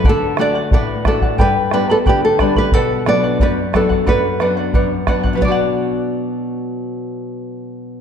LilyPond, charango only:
\new Staff \with { instrumentName = "Charango" } { \time 2/4 \key b \minor \tempo 4 = 90 <a' d'' fis''>8 <a' d'' fis''>16 <d'' fis''>16 <a' d'' fis''>8 <a' d'' fis''>16 <d'' fis''>16 | <g' b' d'' g'' b''>8 <b' d'' g'' b''>16 <b' d'' b''>16 <b' d'' g'' b''>8 <b' d'' g'' b''>16 <b' d'' b''>16 | <b' d'' fis''>8 <b' d'' fis''>16 <d'' fis''>16 <b' d'' fis''>8 <b' d'' fis''>16 <d'' fis''>16 | <b' d'' fis''>8 <b' d'' fis''>16 <d'' fis''>16 <b' d'' fis''>8 <b' d'' fis''>16 <d'' fis''>16 |
<b' d'' fis''>2~ | <b' d'' fis''>2 | }